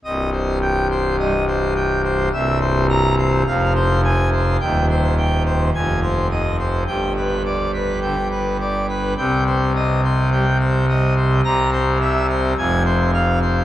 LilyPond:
<<
  \new Staff \with { instrumentName = "Pipe organ" } { \time 4/4 \key c \minor \tempo 4 = 106 ees''8 c''8 g''8 c''8 ees''8 c''8 g''8 c''8 | e''8 c''8 bes''8 c''8 f''8 c''8 aes''8 c''8 | g''8 c''8 g''8 c''8 aes''8 c''8 ees''8 c''8 | g''8 b'8 d''8 b'8 g''8 b'8 d''8 b'8 |
g''8 c''8 ees''8 c''8 g''8 c''8 ees''8 c''8 | bes''8 c''8 e''8 c''8 aes''8 c''8 f''8 c''8 | }
  \new Staff \with { instrumentName = "Pipe organ" } { \clef bass \time 4/4 \key c \minor << { c,2 g,16 r4. r16 | c,2 f,2 | ees,2 f,2 | g,2 d16 r4. r16 |
c2 g16 r4. r16 | c2 f,2 | } \\ { c,,1 | c,,2 f,,2 | ees,,2 f,,2 | g,,1 |
c,1 | c,2 f,,2 | } >> }
>>